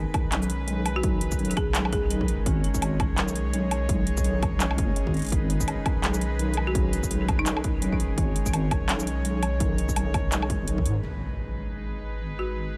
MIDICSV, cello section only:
0, 0, Header, 1, 2, 480
1, 0, Start_track
1, 0, Key_signature, 5, "minor"
1, 0, Tempo, 357143
1, 1388, Time_signature, 4, 2, 24, 8
1, 17167, End_track
2, 0, Start_track
2, 0, Title_t, "Cello section"
2, 0, Program_c, 0, 48
2, 0, Note_on_c, 0, 56, 78
2, 0, Note_on_c, 0, 63, 71
2, 0, Note_on_c, 0, 68, 70
2, 0, Note_on_c, 0, 71, 86
2, 3299, Note_off_c, 0, 71, 0
2, 3304, Note_on_c, 0, 73, 85
2, 7136, Note_off_c, 0, 73, 0
2, 7148, Note_on_c, 0, 71, 88
2, 10978, Note_off_c, 0, 71, 0
2, 10991, Note_on_c, 0, 73, 84
2, 14775, Note_off_c, 0, 63, 0
2, 14776, Note_off_c, 0, 56, 0
2, 14776, Note_off_c, 0, 68, 0
2, 14819, Note_off_c, 0, 73, 0
2, 14829, Note_on_c, 0, 56, 73
2, 14830, Note_on_c, 0, 63, 65
2, 14830, Note_on_c, 0, 71, 76
2, 14831, Note_on_c, 0, 68, 65
2, 17167, Note_off_c, 0, 56, 0
2, 17167, Note_off_c, 0, 63, 0
2, 17167, Note_off_c, 0, 68, 0
2, 17167, Note_off_c, 0, 71, 0
2, 17167, End_track
0, 0, End_of_file